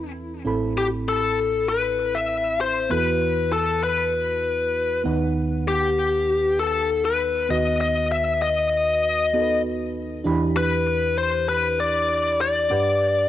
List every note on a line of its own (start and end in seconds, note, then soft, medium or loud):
0.00 0.42 E2 medium
0.00 0.42 E3 medium
0.00 0.42 C4 medium
0.00 0.42 E4 soft
0.00 0.42 A4 medium
0.00 0.43 B4 medium
0.45 2.87 A1 medium
0.45 2.87 A2 medium
0.45 2.86 C4 medium
0.45 2.87 E4 medium
0.45 2.87 A4 medium
0.45 2.88 B5 medium
0.78 0.86 G4 medium
1.09 1.69 A4 medium
1.69 2.16 B4 medium
2.15 2.57 E5 loud
2.61 2.89 C5 medium
2.90 5.01 E2 medium
2.90 5.01 E3 medium
2.90 5.01 B3 medium
2.90 5.01 E4 medium
2.90 5.02 F#4 medium
2.90 2.98 A4 medium
2.90 3.52 B4 loud
2.99 5.05 B4 medium
3.52 3.81 A4 medium
3.83 5.02 B4 medium
5.04 7.46 D#2 medium
5.04 7.46 D#3 medium
5.04 7.46 B3 medium
5.04 7.46 D#4 medium
5.04 7.47 B4 medium
5.04 7.46 F#5 medium
5.68 6.62 G4 medium
6.59 7.05 A4 medium
7.05 7.47 B4 loud
7.49 9.91 D#2 medium
7.49 9.91 D#3 medium
7.49 9.30 B3 medium
7.49 9.30 F#4 medium
7.49 9.31 B4 medium
7.49 7.80 D#5 loud
7.81 8.11 D#5 loud
8.12 8.42 E5 loud
8.42 9.61 D#5 medium
9.33 10.26 B3 medium
9.33 10.26 D#4 medium
9.33 10.26 F#4 medium
9.33 9.41 A4 medium
9.41 10.29 B4 medium
10.24 12.67 E2 medium
10.24 12.67 E3 medium
10.24 12.66 D4 medium
10.24 12.66 E4 medium
10.24 12.67 G4 medium
10.24 12.67 B5 medium
10.57 11.18 B4 loud
11.18 11.46 C5 loud
11.49 11.80 B4 loud
11.80 12.40 D5 loud
12.41 13.29 D5 loud
12.70 13.29 G2 medium
12.70 13.29 D4 medium
12.70 13.29 G4 medium
12.70 13.29 B4 medium
12.70 13.29 F#5 medium